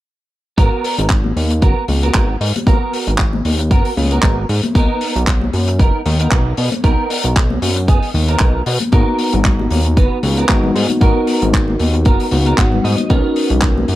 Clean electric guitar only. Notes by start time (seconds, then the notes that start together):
0.57 B3 F#4 A#4
1.50 muted clean electric guitar stroke
1.62 B3 F#4 A#4
2.02 B3 F#4 A#4
2.67 B3 F#4 A#4
3.59 muted clean electric guitar stroke
3.71 B3 F#4 A#4
4.11 B3 F#4 A#4
4.75 B3 D#4 A#4
5.68 muted clean electric guitar stroke
5.80 B3 D#4 A#4
6.20 B3 D#4 A#4
6.84 B3 D#4 A#4
7.76 muted clean electric guitar stroke
7.88 B3 D#4 G#4
8.28 B3 D#4 A#4
8.92 B3 F#4 A#4
9.85 muted clean electric guitar stroke
9.97 B3 F#4 B4
10.37 B3 F#4 A#4
11.01 B3 F#4 A#4
11.94 muted clean electric guitar stroke
12.05 B3 F#4 A#4
12.46 B3 F#4 A#4
12.58 F#5
12.84 D#5
13.10 B3 D#4 A#4